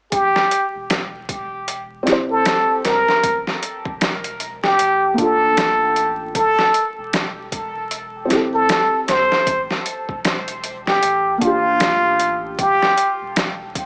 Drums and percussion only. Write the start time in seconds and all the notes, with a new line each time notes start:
0.12 kick, closed hi-hat
0.36 snare
0.51 closed hi-hat
0.90 snare, closed hi-hat
1.29 kick, closed hi-hat
1.68 closed hi-hat
2.07 snare, closed hi-hat
2.45 snare, closed hi-hat
2.85 snare, closed hi-hat
3.08 snare
3.23 kick, closed hi-hat
3.47 snare
3.63 closed hi-hat
3.85 kick
4.01 snare, closed hi-hat
4.24 closed hi-hat
4.40 closed hi-hat
4.64 snare
4.79 closed hi-hat
5.18 kick, closed hi-hat
5.57 snare, closed hi-hat
5.96 closed hi-hat
6.35 kick, closed hi-hat
6.59 snare
6.74 closed hi-hat
7.13 snare, closed hi-hat
7.52 kick, closed hi-hat
7.91 closed hi-hat
8.30 snare, closed hi-hat
8.69 snare, closed hi-hat
9.08 snare, closed hi-hat
9.32 snare
9.47 kick, closed hi-hat
9.71 snare
9.86 closed hi-hat
10.09 kick
10.25 snare, closed hi-hat
10.48 closed hi-hat
10.64 closed hi-hat
10.87 snare
11.03 closed hi-hat
11.41 kick, closed hi-hat
11.80 snare, closed hi-hat
12.19 closed hi-hat
12.59 kick, closed hi-hat
12.82 snare
12.97 closed hi-hat
13.36 snare, closed hi-hat
13.75 kick, closed hi-hat